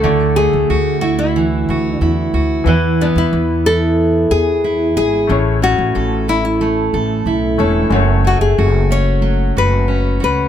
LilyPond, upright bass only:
\new Staff \with { instrumentName = "Upright bass" } { \clef bass \time 4/4 \key fis \minor \tempo 4 = 91 d,8. d,16 d,4. d,8 e,8 d,8 | e,8. e,16 e,4. e,4 gis,,8 | a,,8. a,,16 a,,4. a,,8 b,,8 e,,8 | fis,,8. fis,,16 fis,,4. fis,,4 cis,8 | }